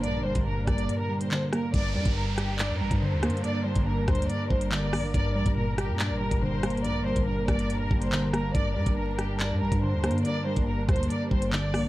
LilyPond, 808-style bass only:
\new Staff \with { instrumentName = "808-style bass" } { \clef bass \time 4/4 \key g \minor \tempo 4 = 141 bes,,16. fis,,16. g,,8. g,,8 r2 | g,,8 g,16 g,,4. g,16 g,,16 g,8 d,16. g,16. | r8. g,,8. d,8 r8 g,,4 bes,,16 g,,16 | g,,8 bes,,16 g,,4 g,8 g,,8 fis,,4~ fis,,16 |
bes,,16. fis,,16. g,,8. g,,8. fis,,16 g,,4. | g,,8 g,16 g,,4. g,16 g,,16 g,8 d,16. g,16. | r8. g,,8. d,8 r8 g,,4 bes,,16 g,,16 | }